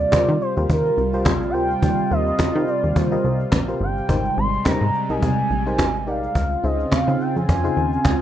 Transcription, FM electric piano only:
0.12 0.34 F4 medium
0.12 0.34 G4 medium
0.12 0.34 A#4 medium
0.12 0.34 C5 loud
0.57 0.83 F4 medium
0.57 0.84 G4 medium
0.57 0.84 A#4 medium
0.57 0.84 C5 medium
1.13 1.33 F4 medium
1.13 1.33 G4 medium
1.13 1.33 A#4 medium
1.13 1.33 C5 loud
1.54 1.81 F4 medium
1.54 1.81 G4 medium
1.54 1.81 A#4 medium
1.54 1.81 C5 medium
2.11 2.32 F4 medium
2.11 2.32 G4 medium
2.11 2.32 A#4 medium
2.11 2.32 C5 medium
2.55 2.82 F4 medium
2.55 2.82 G4 medium
2.55 2.82 A#4 medium
2.55 2.82 C5 medium
3.11 3.38 F4 medium
3.11 3.38 G4 medium
3.11 3.38 A#4 medium
3.11 3.39 D#5 medium
3.68 3.87 F4 medium
3.68 3.87 G4 medium
3.68 3.88 A#4 medium
3.68 3.88 C5 medium
4.09 4.36 D#4 medium
4.09 4.36 G4 medium
4.09 4.36 A#4 medium
4.09 4.36 C5 medium
4.66 4.87 D#4 medium
4.66 4.87 G4 medium
4.66 4.87 A#4 medium
4.66 4.87 C5 medium
5.10 5.36 D#4 medium
5.10 5.36 G4 medium
5.10 5.37 A#4 medium
5.10 5.37 D#5 medium
5.66 5.86 D#4 loud
5.66 5.86 G4 medium
5.66 5.86 A#4 medium
5.66 5.86 C5 loud
6.07 6.34 D#4 medium
6.07 6.34 G4 medium
6.07 6.34 A#4 medium
6.07 6.34 D5 medium
6.63 6.85 D#4 medium
6.63 6.85 F4 medium
6.63 6.85 G#4 medium
6.63 6.85 C5 medium
7.07 7.34 D#4 medium
7.07 7.34 F4 medium
7.07 7.34 G#4 medium
7.07 7.34 C5 medium
7.64 7.91 D#4 medium
7.64 7.91 F4 medium
7.64 7.91 G#4 medium
7.64 7.91 C5 loud

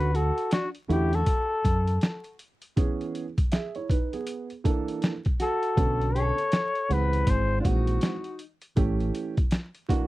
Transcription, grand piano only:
0.88 1.18 D3 medium
0.88 1.18 A3 medium
0.88 1.18 C#4 medium
0.88 1.18 F#4 medium
2.76 3.23 E3 medium
2.76 3.24 B3 medium
2.76 3.24 C#4 medium
2.76 3.24 G#4 medium
3.52 3.75 G#4 medium
3.52 3.74 E5 medium
3.76 3.89 E4 medium
3.76 3.89 C#5 medium
3.90 4.12 D#4 medium
3.90 4.12 B4 medium
4.13 4.49 B3 medium
4.13 4.49 G#4 medium
4.64 5.11 E3 medium
4.64 5.11 A#3 medium
4.64 5.11 D4 medium
4.64 5.12 A4 medium
5.76 6.33 D3 medium
5.76 6.33 B3 medium
5.76 6.33 C#4 medium
5.76 6.33 A4 medium
6.89 7.62 E3 medium
6.89 7.63 G#3 medium
6.89 7.63 C4 medium
6.89 7.96 F#5 medium
7.64 8.11 E3 medium
7.64 8.11 G#3 medium
7.64 8.11 C4 medium
7.64 8.11 F#4 medium
8.76 9.33 E3 medium
8.76 9.33 A3 medium
8.76 9.33 C#4 medium
8.76 9.33 G4 medium
9.89 10.07 E3 loud
9.89 10.07 A#3 medium
9.89 10.07 D4 medium
9.89 10.07 F#4 loud

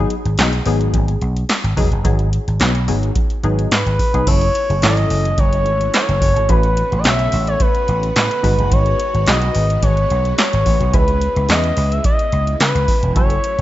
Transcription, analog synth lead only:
3.72 4.29 B4 medium
4.28 4.82 C#5 loud
4.83 5.40 D#5 loud
5.39 5.94 C#5 loud
5.94 6.51 C#5 loud
6.49 7.00 B4 loud
6.99 7.07 D#5 medium
7.05 7.47 E5 loud
7.48 7.63 C#5 medium
7.61 8.16 B4 loud
8.17 8.74 B4 loud
8.73 9.29 C#5 loud
9.28 9.82 D#5 loud
9.83 10.34 C#5 loud
10.38 10.95 C#5 loud
10.93 11.49 B4 loud
11.49 11.94 D#5 loud
11.92 12.04 E5 loud
12.05 12.57 D#5 loud
12.60 13.12 B4 loud
13.16 13.62 C#5 loud

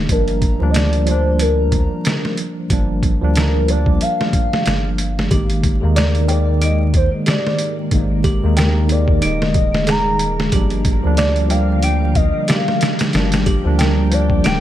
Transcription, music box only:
5.31 5.93 G4 medium
5.96 6.17 D5 loud
6.28 6.58 G5 medium
6.61 7.24 D#4 medium
7.26 7.58 G4 medium
8.24 8.54 G4 loud
8.57 9.19 G5 medium
9.22 9.84 D#4 medium
9.87 10.08 G#4 medium
10.53 11.15 G4 medium
11.18 11.38 D5 loud
11.51 11.80 G5 medium
11.83 12.46 D4 medium
12.49 12.80 G4 medium
13.46 13.76 G4 loud
13.79 14.41 G5 medium
14.44 14.60 D4 medium

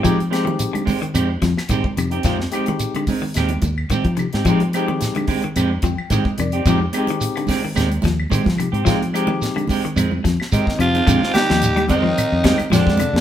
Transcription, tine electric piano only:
0.03 0.17 G#3 medium
0.03 0.17 C4 medium
0.03 0.18 D#4 medium
0.03 0.18 G4 loud
0.32 0.82 G#3 medium
0.32 0.82 C4 medium
0.32 0.83 D#4 medium
0.32 0.83 G4 medium
1.96 2.03 D#4 medium
1.96 2.04 G4 medium
2.10 2.17 D#4 medium
2.10 2.17 G4 loud
2.24 2.38 G#3 medium
2.24 2.38 C4 medium
2.24 2.38 D#4 medium
2.24 2.38 F4 loud
2.51 3.02 G#3 medium
2.51 3.02 C4 medium
2.51 3.03 D#4 medium
2.51 3.03 G4 medium
4.17 4.24 D#4 medium
4.17 4.25 G4 medium
4.33 4.39 D#4 medium
4.33 4.40 G4 loud
4.48 4.60 G#3 medium
4.48 4.60 C4 medium
4.48 4.61 D#4 medium
4.48 4.61 G4 medium
4.76 5.25 G#3 medium
4.76 5.25 C4 medium
4.76 5.25 D#4 medium
4.76 5.25 G4 medium
5.84 6.09 G5 medium
6.12 6.37 D#5 medium
6.39 6.45 D#4 medium
6.39 6.46 A#4 medium
6.39 6.65 D5 medium
6.54 6.59 D#4 medium
6.54 6.60 G4 loud
6.68 6.81 G#3 medium
6.68 6.81 C4 medium
6.68 6.81 D#4 medium
6.68 6.81 G4 loud
6.96 7.45 G#3 medium
6.96 7.46 C4 medium
6.96 7.46 D#4 medium
6.96 7.46 G4 loud
8.59 8.66 D#4 medium
8.59 8.66 G4 loud
8.74 8.80 D#4 loud
8.74 8.80 G4 loud
8.86 9.00 G#3 medium
8.86 9.00 C4 medium
8.86 9.00 D#4 medium
8.86 9.00 F4 loud
9.14 9.64 G#3 medium
9.14 9.65 C4 medium
9.14 9.65 D#4 medium
9.14 9.65 G4 loud
10.79 10.86 D#4 medium
10.79 10.86 G4 medium
10.92 10.99 D#4 medium
10.92 11.00 G#4 medium

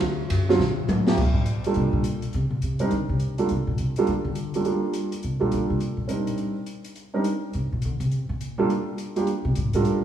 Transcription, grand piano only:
0.49 0.59 D3 medium
0.49 0.59 F#3 medium
0.49 0.59 C4 medium
0.49 0.59 F4 medium
1.07 1.17 F3 medium
1.07 1.17 A3 medium
1.07 1.17 A#3 medium
1.07 1.17 G4 medium
1.66 2.03 G3 medium
1.66 2.03 A#3 medium
1.66 2.03 D4 medium
1.66 2.03 F4 medium
1.66 2.04 A4 medium
2.80 2.90 G3 medium
2.80 2.90 C4 medium
2.80 2.90 D4 medium
2.80 2.90 D#4 medium
2.80 2.90 A#4 medium
3.38 3.48 G3 medium
3.38 3.48 A#3 medium
3.38 3.48 D4 medium
3.38 3.49 F4 medium
3.38 3.49 A4 medium
3.98 4.07 G3 medium
3.98 4.07 A#3 medium
3.98 4.07 D4 medium
3.98 4.07 F4 medium
3.98 4.07 A4 medium
4.55 4.64 G3 soft
4.55 4.64 A#3 soft
4.55 4.64 D4 soft
4.55 4.64 F4 soft
4.55 4.64 A4 medium
4.65 5.09 G3 soft
4.65 5.09 A#3 soft
4.65 5.09 D4 soft
4.65 5.09 F4 soft
4.65 5.09 A4 medium
5.40 5.78 G3 medium
5.40 5.78 A#3 medium
5.40 5.79 D4 soft
5.40 5.78 F4 medium
5.40 5.78 A4 medium
6.08 6.52 G3 soft
6.08 6.52 C4 soft
6.08 6.52 D4 soft
6.08 6.52 D#4 soft
6.08 6.52 A#4 soft
7.14 7.24 G3 medium
7.14 7.24 C4 medium
7.14 7.24 D4 medium
7.14 7.24 D#4 medium
7.14 7.24 A#4 medium
8.58 8.68 G3 medium
8.58 8.68 A#3 medium
8.58 8.68 D4 medium
8.58 8.69 F4 medium
8.58 8.69 A4 medium
9.16 9.26 G3 medium
9.16 9.26 A#3 medium
9.16 9.26 D4 medium
9.16 9.26 F4 medium
9.16 9.26 G4 medium
9.75 10.04 G3 medium
9.75 10.04 D4 medium
9.75 10.04 F4 medium
9.75 10.04 A4 medium
9.75 10.04 A#4 medium

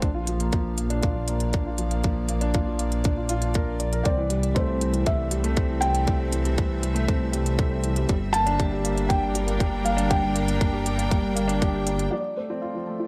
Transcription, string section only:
0.00 4.05 A#2 medium
0.00 1.63 C4 medium
0.00 0.88 A4 medium
0.00 4.06 F5 medium
0.75 4.05 A#3 medium
0.99 5.22 D5 medium
4.05 8.09 C3 medium
4.41 9.31 E5 medium
4.49 9.47 C4 medium
5.06 8.09 A4 medium
8.09 12.12 G3 medium
8.65 13.07 D4 medium
9.11 13.07 G5 medium
9.29 12.12 A#4 medium
12.13 13.07 F3 medium
12.39 13.07 C4 medium
12.50 13.07 A4 medium

